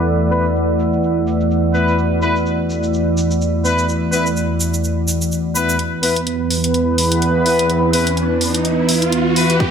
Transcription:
Already playing: analog synth pad E2 E3 A3 D5, ambient pad E4 B4 F#5 E6
0.08 cabasa
0.31 horn section B3 E4 B4, cabasa
0.45 cabasa
0.56 cabasa
0.79 cabasa
0.93 cabasa
1.03 cabasa
1.27 cabasa
1.41 cabasa
1.51 cabasa
1.74 horn section B3 E4 B4, cabasa
1.88 cabasa
1.98 cabasa
2.22 horn section B3 E4 B4, cabasa
2.36 cabasa
2.46 cabasa
2.70 cabasa
2.83 cabasa
2.94 cabasa
3.17 cabasa
3.31 cabasa
3.41 cabasa
3.65 horn section B3 E4 B4, cabasa
3.78 cabasa
3.89 cabasa
4.12 horn section B3 E4 B4, cabasa
4.26 cabasa
4.36 cabasa
4.60 cabasa
4.74 cabasa
4.84 cabasa
5.08 cabasa
5.21 cabasa
5.32 cabasa
5.55 horn section B3 E4 B4, cabasa
5.69 cabasa
5.79 analog synth pad E2 E3 B3 B4, closed hi-hat, riser
6.03 horn section B3 E4 B4, open hi-hat
6.16 closed hi-hat
6.27 closed hi-hat
6.50 open hi-hat
6.64 closed hi-hat
6.74 closed hi-hat
6.98 open hi-hat
7.12 closed hi-hat
7.22 closed hi-hat
7.46 horn section B3 E4 B4, open hi-hat
7.59 closed hi-hat
7.70 closed hi-hat
7.93 horn section B3 E4 B4, open hi-hat
8.07 closed hi-hat
8.17 closed hi-hat
8.41 open hi-hat
8.54 closed hi-hat
8.65 closed hi-hat
8.89 open hi-hat
9.02 closed hi-hat
9.12 closed hi-hat
9.36 horn section B3 E4 B4, open hi-hat
9.50 closed hi-hat
9.60 analog synth pad A4, kick, closed hi-hat

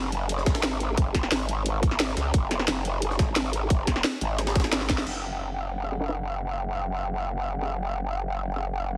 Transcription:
Already playing: wobble bass F#1
0.12 closed hi-hat
0.29 closed hi-hat
0.38 snare
0.46 wobble bass G#1, kick, snare, closed hi-hat
0.55 snare, closed hi-hat
0.63 snare, closed hi-hat
0.80 closed hi-hat
0.97 wobble bass F#1, kick, closed hi-hat
1.15 kick, snare, closed hi-hat
1.23 snare
1.32 wobble bass G#1, snare, closed hi-hat, open hi-hat
1.49 closed hi-hat
1.66 closed hi-hat
1.83 kick, closed hi-hat
1.91 snare
2.00 snare, closed hi-hat
2.08 closed hi-hat
2.17 wobble bass C#2, snare, closed hi-hat
2.34 wobble bass F#1, kick, closed hi-hat
2.51 snare, closed hi-hat
2.59 snare
2.68 wobble bass F#1, snare, closed hi-hat
2.85 closed hi-hat
3.02 closed hi-hat
3.11 snare
3.19 wobble bass G#1, kick, snare, closed hi-hat
3.36 snare, closed hi-hat
3.53 closed hi-hat
3.70 wobble bass F#1, kick, closed hi-hat
3.87 kick, snare, closed hi-hat
3.96 snare
4.04 snare, closed hi-hat, open hi-hat
4.21 wobble bass G#1, closed hi-hat
4.38 snare, closed hi-hat
4.47 snare, closed hi-hat
4.55 kick, snare, closed hi-hat
4.60 snare, closed hi-hat
4.64 snare, closed hi-hat
4.73 snare, closed hi-hat
4.81 snare, closed hi-hat
4.90 kick, snare, closed hi-hat
4.98 snare
5.07 wobble bass F#1, crash
5.83 snare
5.92 snare
6.00 snare
6.09 snare
6.26 closed hi-hat
6.43 closed hi-hat
7.11 closed hi-hat
7.45 closed hi-hat
7.62 snare
7.79 closed hi-hat
7.96 closed hi-hat
8.13 closed hi-hat
8.31 closed hi-hat
8.48 closed hi-hat
8.56 snare
8.65 closed hi-hat
8.90 closed hi-hat

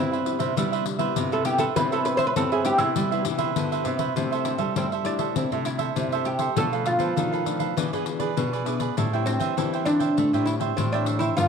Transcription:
Already playing: nylon-string guitar G2 G3 B3 C4 E4, cavaquinho E4 B4 C5, oud E4
0.00 cavaquinho E5
0.12 cavaquinho B4 C5 E5, pandeiro
0.26 nylon-string guitar G3 B3 E4, pandeiro
0.39 nylon-string guitar C3, cavaquinho B4 C5 E5, pandeiro
0.56 nylon-string guitar C3 G3 B3 E4, cavaquinho E4 B4 C5 E5, pandeiro
0.72 cavaquinho B4 C5 E5, pandeiro
0.85 muted cavaquinho stroke, pandeiro
0.99 nylon-string guitar G3 B3 E4, cavaquinho B4 C5 E5, pandeiro
1.16 nylon-string guitar G2 C3, pandeiro
1.32 oud A4, cavaquinho B4 C5 E5, pandeiro
1.45 nylon-string guitar G3 B3 E4, cavaquinho E4 B4 C5 E5, oud G4, pandeiro
1.58 oud A4, cavaquinho B4 C5 E5, pandeiro
1.76 nylon-string guitar C3 G3 B3 E4, cavaquinho E4 B4 C5 E5, oud B4, pandeiro
1.92 oud A4, cavaquinho B4 C5 E5, pandeiro
2.05 oud B4, pandeiro
2.17 cavaquinho B4 C5 E5, oud C5, pandeiro
2.27 oud B4
2.36 nylon-string guitar G2 G3 B3 C4 E4, cavaquinho E4 B4 C5 E5, oud A4, pandeiro
2.52 oud G#4, cavaquinho B4 C5 E5, pandeiro
2.65 nylon-string guitar G3 B3 E4, oud G4, pandeiro
2.78 nylon-string guitar C3, oud E4, cavaquinho B4 C5 E5, pandeiro
2.96 nylon-string guitar C3 G3, cavaquinho E4 B4 C5 E5, pandeiro
3.11 nylon-string guitar G3 B3 E4, cavaquinho B4 C5 E5, pandeiro
3.25 nylon-string guitar E3 G3 B3 E4, muted cavaquinho stroke, pandeiro
3.38 cavaquinho B4 C5 E5, pandeiro
3.56 nylon-string guitar G2 D3 G3 B3 E4, pandeiro
3.72 cavaquinho B4 C5 E5, pandeiro
3.85 nylon-string guitar C3, cavaquinho E4 B4 C5 E5, pandeiro
3.98 cavaquinho B4 C5 E5, pandeiro
4.16 nylon-string guitar C3 G3 A3 E4, cavaquinho E4 A4 C5 E5, pandeiro
4.32 cavaquinho A4 C5 E5, pandeiro
4.45 oud C4, pandeiro
4.58 nylon-string guitar G3, cavaquinho A4 C5 E5, pandeiro
4.75 nylon-string guitar G2 G3 A3 E4, oud C4, cavaquinho E4 A4 C5 E5, pandeiro
4.92 cavaquinho A4 C5 E5, pandeiro
5.04 nylon-string guitar G3 A3 E4, oud D4, pandeiro
5.19 cavaquinho A4 C5 E5, pandeiro
5.36 nylon-string guitar C3 C4, cavaquinho E4 A4 C5 E5, pandeiro
5.52 nylon-string guitar C3 G3 A3 E4, cavaquinho A4 C5 E5, pandeiro
5.65 oud E4, muted cavaquinho stroke, pandeiro
5.79 cavaquinho A4 C5 E5, pandeiro
5.96 nylon-string guitar G2 C3 G3 A3 E4, pandeiro
6.12 cavaquinho A4 C5 E5, pandeiro
6.25 cavaquinho E4 A4 C5 E5, oud G4, pandeiro
6.39 cavaquinho A4 C5 E5, pandeiro
6.56 nylon-string guitar B2 F3 A3 D4, cavaquinho D4 A4 B4 F5, oud A4, pandeiro
6.72 nylon-string guitar F3 A3 D4, cavaquinho A4 B4 F5, pandeiro
6.86 oud F4, pandeiro
6.99 nylon-string guitar F3, cavaquinho A4 B4 F5, pandeiro
7.16 nylon-string guitar B2 D#3 F3 A3 D4, cavaquinho D4 A4 B4 F5, pandeiro
7.32 cavaquinho A4 B4 F5, pandeiro
7.45 nylon-string guitar F3 A3 D4, pandeiro
7.59 cavaquinho A4 B4 F5, pandeiro
7.77 nylon-string guitar E3 B3 D4 G#4, cavaquinho E4 G#4 B4 D5, pandeiro
7.93 nylon-string guitar E3 B3 D4 G#4, cavaquinho G#4 B4 D5, pandeiro
8.06 muted cavaquinho stroke, pandeiro
8.19 cavaquinho G#4 B4 D5, pandeiro
8.37 nylon-string guitar B2 B3 D4 G#4, pandeiro
8.53 cavaquinho G#4 B4 D5, pandeiro
8.66 nylon-string guitar B3 D4 G#4, cavaquinho E4 G#4 B4 D5, pandeiro
8.79 cavaquinho G#4 B4 D5, pandeiro
8.97 nylon-string guitar A2 G3 C4 E4, cavaquinho A4 C5 E5 G5, pandeiro
9.13 nylon-string guitar G3 C4 E4, cavaquinho C5 E5 G5, pandeiro
9.26 oud C4, pandeiro
9.40 nylon-string guitar E3, cavaquinho C5 E5 G5, pandeiro
9.57 nylon-string guitar E3 G3 C4 E4, cavaquinho A4 C5 E5 G5, pandeiro
9.73 cavaquinho C5 E5 G5, pandeiro
9.85 nylon-string guitar G3 C4 E4, oud D4, pandeiro
9.99 cavaquinho C5 E5 G5, pandeiro
10.17 nylon-string guitar A2 A3, cavaquinho A4 C5 E5 G5, pandeiro
10.33 nylon-string guitar A2 G3 C4 E4, cavaquinho C5 E5 G5, pandeiro
10.46 oud E4, muted cavaquinho stroke, pandeiro
10.60 cavaquinho C5 E5 G5, pandeiro
10.77 nylon-string guitar A2 E3 G3 C4 E4, oud C4, pandeiro
10.93 oud D4, cavaquinho C5 E5 G5, pandeiro
11.06 cavaquinho A4 C5 E5 G5, pandeiro
11.19 oud E4, cavaquinho C5 E5 G5, pandeiro
11.37 nylon-string guitar G2 F3 A#3 D4, oud F4, cavaquinho F4 A#4 D5 G5, pandeiro

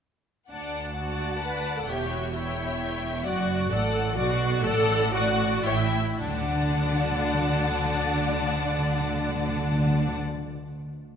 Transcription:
0.51 cello section D2, double bass section D2, viola section D4, violin section D5 F#5 A5
0.97 viola section F#4, violin section D5 F#5 A5
1.43 viola section B4
1.79 viola section A4
1.89 double bass section E1, cello section E2, viola section G4, violin section C#5 E5 G5
2.12 viola section F#4
2.34 viola section E4, violin section C#5 E5 G5
3.25 double bass section F#1, cello section F#2, viola section F#4, violin section D5 F#5
3.70 double bass section A1, cello section A2, viola section A4, violin section D5 F#5
4.16 double bass section B1, cello section B2, viola section F#4, violin section D5 F#5
4.64 double bass section A1, cello section A2, timpani A2, viola section A4, violin section D5 F#5
5.14 viola section F#4, violin section D5 F#5
5.65 double bass section A1, cello section A2, viola section E4, violin section C#5 E5 G5
6.19 double bass section D2, cello section D3, timpani D3, viola section D4, violin section D5 F#5 A5
6.27 timpani D3
6.34 timpani D3
6.41 timpani D3
6.48 timpani D3
6.55 timpani D3
6.63 timpani D3
6.70 timpani D3
6.77 timpani D3
6.84 timpani D3
6.91 timpani D3
6.98 timpani D3
7.05 timpani D3
7.12 timpani D3
7.19 timpani D3
7.27 timpani D3
7.35 timpani D3
7.42 timpani D3
7.49 timpani D3
7.57 timpani D3
7.64 timpani D3
7.71 timpani D3
7.78 timpani D3
7.85 timpani D3
7.93 timpani D3
7.99 timpani D3
8.06 timpani D3
8.13 timpani D3
8.21 timpani D3
8.28 timpani D3
8.34 timpani D3
8.42 timpani D3
8.50 timpani D3
8.57 timpani D3
8.64 timpani D3
8.71 timpani D3
8.78 timpani D3
8.86 timpani D3
8.93 timpani D3
9.00 timpani D3
9.07 timpani D3
9.15 timpani D3
9.21 timpani D3
9.28 timpani D3
9.35 timpani D3
9.42 timpani D3
9.49 timpani D3
9.57 timpani D3
9.64 timpani D3
9.71 timpani D3
9.79 timpani D3
9.86 timpani D3
9.93 timpani D3
10.00 timpani D3
10.07 timpani D3
10.14 timpani D3
10.21 timpani D3
10.28 timpani D3
10.35 timpani D3

